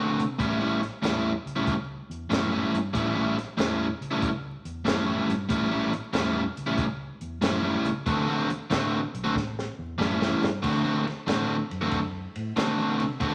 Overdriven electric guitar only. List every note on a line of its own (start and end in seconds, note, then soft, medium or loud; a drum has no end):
0.00 0.22 D3 medium
0.00 0.22 A3 medium
0.00 0.22 C4 medium
0.00 0.22 F#4 medium
0.38 0.60 A2 medium
0.38 0.60 G3 medium
0.38 0.59 C#4 medium
0.38 0.59 E4 medium
0.60 0.80 A2 medium
0.60 0.81 G3 medium
0.60 0.81 C#4 medium
0.60 0.81 E4 medium
0.81 muted overdriven electric guitar stroke soft
1.02 1.31 A2 medium
1.02 1.31 G3 medium
1.02 1.31 C#4 medium
1.02 1.31 E4 medium
1.56 1.74 A2 medium
1.56 1.73 G3 medium
1.56 1.73 C#4 medium
1.56 1.73 E4 medium
2.30 2.51 A2 medium
2.30 2.51 G3 medium
2.30 2.51 C#4 medium
2.30 2.50 E4 medium
2.51 2.77 A2 medium
2.51 2.77 G3 medium
2.51 2.77 C#4 medium
2.51 2.76 E4 medium
2.93 3.15 A2 medium
2.93 3.14 G3 loud
2.93 3.14 C#4 medium
2.93 3.14 E4 loud
3.15 3.36 A2 medium
3.15 3.36 G3 medium
3.15 3.37 C#4 medium
3.15 3.37 E4 medium
3.37 muted overdriven electric guitar stroke soft
3.57 3.86 A2 medium
3.57 3.86 G3 medium
3.57 3.86 C#4 loud
3.57 3.86 E4 loud
4.11 4.29 A2 medium
4.11 4.28 G3 medium
4.11 4.28 C#4 medium
4.11 4.28 E4 medium
4.85 5.06 A2 medium
4.85 5.06 G3 medium
4.85 5.05 C#4 medium
4.85 5.05 E4 loud
5.06 5.32 A2 medium
5.06 5.32 G3 medium
5.06 5.32 C#4 medium
5.06 5.32 E4 medium
5.49 5.71 A2 loud
5.49 5.71 G3 loud
5.49 5.71 C#4 loud
5.49 5.70 E4 loud
5.71 5.92 A2 medium
5.71 5.92 G3 medium
5.71 5.93 C#4 medium
5.71 5.93 E4 loud
5.93 muted overdriven electric guitar stroke soft
6.13 6.42 A2 medium
6.13 6.42 G3 loud
6.13 6.42 C#4 medium
6.13 6.42 E4 medium
6.66 6.85 A2 medium
6.66 6.84 G3 medium
6.66 6.84 C#4 medium
6.66 6.84 E4 loud
7.41 7.63 A2 medium
7.41 7.63 G3 medium
7.41 7.62 C#4 loud
7.41 7.62 E4 loud
7.63 7.89 A2 medium
7.63 7.89 G3 medium
7.63 7.88 C#4 medium
7.63 7.88 E4 medium
8.06 8.28 D3 medium
8.06 8.28 A3 loud
8.06 8.27 C4 medium
8.06 8.27 F#4 loud
8.28 8.49 D3 medium
8.28 8.49 A3 medium
8.28 8.49 C4 medium
8.28 8.50 F#4 loud
8.50 muted overdriven electric guitar stroke soft
8.70 8.98 D3 medium
8.70 8.99 A3 loud
8.70 8.99 C4 loud
8.70 8.99 F#4 medium
9.24 9.35 D3 medium
9.24 9.35 A3 medium
9.24 9.35 C4 medium
9.24 9.35 F#4 medium
9.98 10.20 A2 medium
9.98 10.20 G3 loud
9.98 10.19 C#4 medium
9.98 10.19 E4 medium
10.20 10.46 A2 medium
10.20 10.46 G3 medium
10.20 10.45 C#4 medium
10.20 10.45 E4 medium
10.62 10.84 D3 medium
10.62 10.84 A3 medium
10.62 10.83 C4 medium
10.62 10.83 F#4 medium
10.84 11.05 D3 medium
10.84 11.05 A3 medium
10.84 11.06 C4 medium
10.84 11.06 F#4 medium
11.06 muted overdriven electric guitar stroke soft
11.27 11.56 D3 medium
11.27 11.56 A3 medium
11.27 11.56 C4 loud
11.27 11.56 F#4 medium
11.81 11.99 D3 medium
11.81 11.99 A3 medium
11.81 11.99 C4 medium
11.81 11.98 F#4 medium
12.56 12.78 D3 medium
12.56 12.78 A3 medium
12.56 12.77 C4 medium
12.56 12.77 F#4 medium
12.78 13.04 D3 medium
12.78 13.03 A3 medium
12.78 13.03 C4 medium
12.78 13.03 F#4 medium
13.20 13.35 D3 medium
13.20 13.35 A3 medium
13.20 13.35 C4 loud
13.20 13.35 F#4 loud